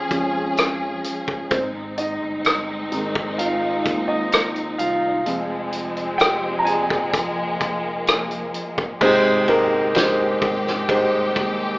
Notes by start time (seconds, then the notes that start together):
Already playing: F3 G#3 C#4 G#4 C#5
0.10 F2 F3 G#3 C#4, kick, closed hi-hat
0.57 cross-stick, closed hi-hat
1.04 closed hi-hat
1.28 kick
1.51 G#1 G#3 C4 D#4 C5, kick, closed hi-hat
1.98 D#4 D#5, closed hi-hat
2.22 G1
2.44 cross-stick, closed hi-hat
2.92 G#1 D#3 G#3 C4, closed hi-hat
3.15 kick
3.38 F4 F5, closed hi-hat
3.86 D#2, kick, closed hi-hat
4.08 D#4 D#5
4.32 cross-stick, closed hi-hat
4.56 closed hi-hat
4.78 C2 F4 F5, closed hi-hat
5.25 F1 F3 G#3 C4, closed hi-hat
5.72 closed hi-hat
5.97 closed hi-hat
6.18 G4 G5, cross-stick, closed hi-hat
6.59 A#5
6.65 F1 G#4 G#5, closed hi-hat
6.90 kick, cross-stick
7.14 A#3, kick, closed hi-hat
7.61 F1, kick, closed hi-hat
8.07 cross-stick, closed hi-hat
8.31 closed hi-hat
8.54 closed hi-hat
8.78 kick
9.00 G#1 C3 G#3 C4 D#4 G4 C5, kick, crash
9.48 G#3 D#4 G4 A#4, ride
9.72 G1
9.95 G#3 D#4 G4 C5, snare, ride
10.42 G#1, kick, ride
10.67 snare
10.89 G#3 D#4 G4 C5, kick, ride
11.36 D#2, kick, ride